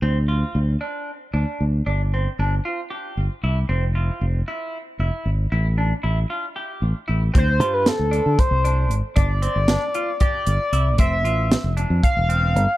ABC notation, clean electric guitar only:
X:1
M:7/8
L:1/8
Q:1/4=115
K:Dm
V:1 name="Clean electric guitar"
C F2 D2 D2 | D C D F G2 E | C F2 E2 E2 | E D E F G2 E |
C F2 D2 D2 | D C D F G2 E | C F2 D2 C2 |]